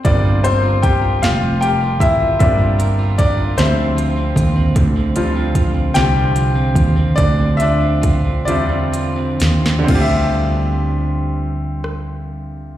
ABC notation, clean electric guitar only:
X:1
M:6/8
L:1/16
Q:3/8=50
K:Dm
V:1 name="Clean electric guitar"
G, F B F B F G, F B F B F | G, F B F B F D, C F C F C | D, C F C F C D, C F C F C | D, C F C F C D, C F C F C |
[D,G,CF]12 |]